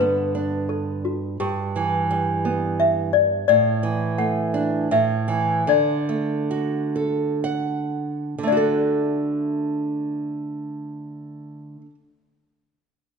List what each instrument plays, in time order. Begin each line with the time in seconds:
Already playing: nylon-string guitar G2 D3
0.00 nylon-string guitar B3, toy piano B4
0.35 nylon-string guitar D4
0.69 toy piano A4
1.05 toy piano F#4
1.40 nylon-string guitar G2, toy piano G4
1.76 nylon-string guitar E3
2.11 nylon-string guitar G3
2.45 nylon-string guitar B3
2.80 toy piano E5
3.13 toy piano D5
3.48 nylon-string guitar A2, toy piano D5
3.83 nylon-string guitar E3
4.18 nylon-string guitar A3, toy piano F#5
4.54 nylon-string guitar D4
4.91 nylon-string guitar A2, toy piano E5
5.28 nylon-string guitar E3
5.67 nylon-string guitar D3, toy piano D5
6.09 nylon-string guitar A3
6.51 nylon-string guitar F#4
6.96 nylon-string guitar A4
7.44 nylon-string guitar F#5
8.38 nylon-string guitar D3
8.43 nylon-string guitar A3, toy piano D5
8.48 nylon-string guitar D4
8.52 nylon-string guitar F#4
8.57 nylon-string guitar A4